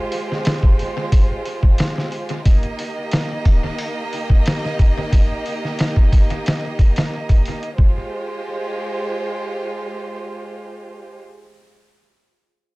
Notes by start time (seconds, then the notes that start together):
Already playing: G#3 F4 G4 C5
0.12 open hi-hat
0.32 snare
0.45 snare, open hi-hat
0.63 kick
0.79 open hi-hat
1.12 kick, open hi-hat
1.46 open hi-hat
1.63 kick
1.78 snare, open hi-hat
1.98 snare
2.12 open hi-hat
2.29 closed hi-hat
2.45 A#3 D#4 G4 D#5, kick, open hi-hat
2.63 closed hi-hat
2.79 open hi-hat
3.11 snare, open hi-hat
3.45 kick, open hi-hat
3.78 open hi-hat
4.13 open hi-hat
4.30 kick
4.46 snare, open hi-hat
4.65 snare
4.79 kick, open hi-hat
5.12 kick, open hi-hat
5.46 open hi-hat
5.65 snare
5.79 snare, open hi-hat
5.96 kick
6.12 kick, open hi-hat
6.30 closed hi-hat
6.46 snare, open hi-hat
6.79 kick, open hi-hat
6.96 snare, open hi-hat
7.29 kick, open hi-hat
7.45 open hi-hat
7.63 closed hi-hat
7.78 G#3 F4 G4 C5, kick